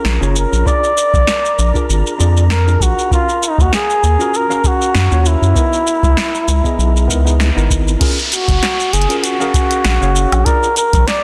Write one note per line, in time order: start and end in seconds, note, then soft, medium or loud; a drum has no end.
0.00 0.17 C#4 loud
0.00 0.17 F4 medium
0.00 0.18 G#4 medium
0.00 0.18 A#4 loud
0.00 8.02 A#4 medium
0.00 8.02 A#5 medium
0.05 0.18 A#1 loud
0.05 snare medium
0.05 shaker soft
0.21 0.46 F#1 loud
0.21 0.62 C#4 medium
0.21 0.63 F4 medium
0.21 0.63 G#4 medium
0.21 0.64 C#5 loud
0.21 shaker soft
0.36 0.68 A#4 medium
0.36 shaker medium
0.52 0.64 A#1 medium
0.52 shaker soft
0.65 0.89 D4 medium
0.65 0.90 F4 medium
0.65 0.90 G#4 medium
0.65 1.89 D5 loud
0.65 0.91 D5 loud
0.65 kick loud
0.65 shaker soft
0.84 shaker soft
0.98 shaker medium
1.13 1.25 A#1 medium
1.13 kick loud
1.13 shaker soft
1.27 snare medium
1.27 shaker soft
1.45 shaker soft
1.58 1.72 A#1 medium
1.58 shaker medium
1.74 2.16 D4 medium
1.74 2.16 F4 medium
1.74 2.16 G#4 medium
1.74 2.17 A#4 medium
1.74 kick medium
1.74 shaker soft
1.89 2.03 G#1 loud
1.89 shaker soft
2.07 shaker soft
2.18 2.77 F2 loud
2.18 2.42 D4 medium
2.18 2.43 F4 medium
2.18 2.43 G#4 medium
2.18 2.44 D5 medium
2.18 shaker medium
2.37 shaker soft
2.50 2.84 A#4 loud
2.50 snare medium
2.50 shaker soft
2.67 3.08 D4 medium
2.67 3.08 F4 medium
2.67 3.09 G#4 medium
2.67 3.09 A#4 medium
2.67 shaker soft
2.80 2.94 A#1 medium
2.80 3.12 F#4 loud
2.80 kick loud
2.80 shaker medium
2.99 shaker soft
3.11 3.27 C#4 medium
3.11 3.27 F4 medium
3.11 3.46 F4 loud
3.11 3.27 F#4 medium
3.11 3.28 A#4 medium
3.11 kick loud
3.11 shaker soft
3.29 shaker soft
3.43 3.63 D#4 medium
3.43 shaker medium
3.58 3.70 D#2 medium
3.58 3.73 F#4 medium
3.58 kick loud
3.58 shaker soft
3.73 4.38 G#4 loud
3.73 snare medium
3.73 shaker soft
3.90 shaker soft
4.03 4.17 D#2 medium
4.03 shaker medium
4.19 4.46 C#4 medium
4.19 4.46 F4 medium
4.19 4.47 F#4 medium
4.19 4.47 A#4 loud
4.19 shaker soft
4.34 4.68 A#4 loud
4.34 shaker soft
4.50 5.07 C#4 medium
4.50 5.08 F#4 medium
4.50 5.08 A#4 loud
4.50 5.08 F5 medium
4.50 shaker soft
4.64 5.29 F#4 loud
4.64 kick medium
4.64 shaker medium
4.82 shaker soft
4.95 5.08 F#2 loud
4.95 snare loud
4.95 shaker soft
5.11 5.36 D#2 loud
5.11 5.53 C#4 medium
5.11 5.53 F4 medium
5.11 5.53 F#4 medium
5.11 5.54 C#5 loud
5.11 shaker soft
5.26 7.41 E4 medium
5.26 shaker medium
5.42 5.53 F#2 medium
5.42 shaker soft
5.55 5.79 B3 medium
5.55 5.80 D#4 medium
5.55 5.80 E4 medium
5.55 5.81 A#4 loud
5.55 kick loud
5.55 shaker soft
5.73 shaker soft
5.87 shaker medium
6.03 6.15 C#2 medium
6.03 kick loud
6.03 shaker soft
6.17 snare medium
6.17 shaker soft
6.35 shaker soft
6.48 6.61 C#2 medium
6.48 shaker medium
6.64 7.05 B3 medium
6.64 7.06 E4 medium
6.64 7.07 G#4 medium
6.64 7.06 D#5 medium
6.64 kick medium
6.64 shaker soft
6.78 7.10 B1 medium
6.78 shaker soft
6.97 shaker soft
7.08 7.51 C#2 loud
7.08 7.21 B3 medium
7.08 7.22 D#4 medium
7.08 7.22 E4 medium
7.08 7.22 A#4 loud
7.08 kick medium
7.08 shaker medium
7.24 7.47 B3 medium
7.24 7.48 D#4 medium
7.24 7.48 E4 medium
7.24 7.49 G#4 medium
7.24 shaker soft
7.40 snare loud
7.40 shaker soft
7.55 7.68 G#1 medium
7.55 7.97 B3 medium
7.55 7.97 D#4 medium
7.55 7.98 E4 medium
7.55 7.98 A#4 medium
7.55 shaker soft
7.70 7.96 G#1 medium
7.70 kick medium
7.70 shaker medium
7.88 shaker soft
7.99 8.16 C#4 medium
7.99 8.16 F4 medium
7.99 8.17 G#4 medium
7.99 8.17 A#4 loud
7.99 kick loud
7.99 closed hi-hat medium
7.99 crash loud
7.99 downlifter medium
7.99 shaker soft
8.19 shaker soft
8.32 8.95 F#4 medium
8.32 closed hi-hat soft
8.32 shaker medium
8.48 8.59 F#1 medium
8.48 kick loud
8.48 closed hi-hat soft
8.48 shaker soft
8.63 snare loud
8.63 closed hi-hat medium
8.63 shaker soft
8.80 shaker soft
8.93 9.07 F#1 medium
8.93 9.19 G#4 medium
8.93 closed hi-hat soft
8.93 shaker medium
9.02 closed hi-hat medium
9.09 9.36 C#4 medium
9.09 9.36 F4 medium
9.09 9.37 G#4 medium
9.09 9.37 A#4 medium
9.09 closed hi-hat soft
9.09 shaker soft
9.19 9.25 G#4 medium
9.24 10.46 F#4 loud
9.24 closed hi-hat medium
9.24 shaker soft
9.39 9.97 C#4 medium
9.39 9.98 G#4 medium
9.39 9.98 A#4 loud
9.39 9.97 F5 medium
9.39 shaker soft
9.54 kick loud
9.54 closed hi-hat soft
9.54 shaker medium
9.71 closed hi-hat soft
9.71 shaker soft
9.85 9.98 A#1 loud
9.85 snare loud
9.85 closed hi-hat medium
9.85 shaker soft
10.01 10.26 F#1 loud
10.01 10.42 C#4 medium
10.01 10.43 G#4 medium
10.01 10.43 C#5 loud
10.01 10.43 F5 medium
10.01 shaker soft
10.16 shaker medium
10.32 10.43 A#1 medium
10.32 closed hi-hat soft
10.32 low woodblock medium
10.32 shaker soft
10.45 10.69 D4 medium
10.45 10.69 F4 medium
10.45 10.70 G#4 medium
10.45 10.76 A#4 loud
10.45 10.70 D5 medium
10.45 kick loud
10.45 closed hi-hat medium
10.45 shaker soft
10.63 shaker soft
10.76 11.09 A#4 medium
10.76 closed hi-hat soft
10.76 shaker medium
10.93 11.04 A#1 loud
10.93 kick loud
10.93 closed hi-hat soft
10.93 shaker soft
11.07 11.23 D5 loud
11.07 snare loud
11.07 closed hi-hat medium
11.07 shaker soft